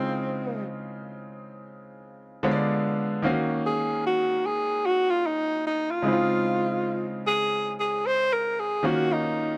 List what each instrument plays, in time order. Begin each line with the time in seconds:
Already playing: grand piano C#3 G#3 C4 D#4 F4, tenor saxophone C4
2.43 grand piano D3 G#3 B3 F4 C#5
2.51 grand piano D5
3.22 grand piano D#3 A#3 C#4 F#4 F5
3.66 tenor saxophone G#4
4.06 tenor saxophone F#4
4.46 tenor saxophone G#4
4.86 tenor saxophone F#4
5.10 tenor saxophone F4
5.27 tenor saxophone D#4
5.67 tenor saxophone D#4
5.91 tenor saxophone F4
6.02 grand piano C#3 G#3 C4 D#4 E4
6.13 grand piano F4
7.27 tenor saxophone G#4
7.80 tenor saxophone G#4
8.06 tenor saxophone C5
8.33 tenor saxophone A#4
8.60 tenor saxophone G#4
8.83 grand piano D#3 A#3 C#4 F4 F#4, tenor saxophone F#4
9.13 tenor saxophone D#4